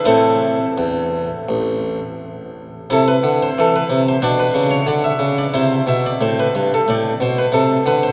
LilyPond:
<<
  \new Staff \with { instrumentName = "Harpsichord" } { \time 4/4 \key a \minor \tempo 4 = 89 << { a'2.~ a'8 r8 | a'16 b'8 c''16 a'16 b'8 c''16 d''16 b'8 cis''16 d''16 e''8 d''16 | c''8 e''16 d''16 c''16 b'8 a'16 d''8 c''16 b'16 a'8 b'16 c''16 | } \\ { r1 | e'2 d'2 | e'1 | } >> }
  \new Staff \with { instrumentName = "Harpsichord" } { \clef bass \time 4/4 \key a \minor <a, c' e'>4 e,4 a,,4 r4 | c8 d8 e8 c8 b,8 cis8 d8 cis8 | c8 b,8 a,8 g,8 a,8 b,8 c8 d8 | }
>>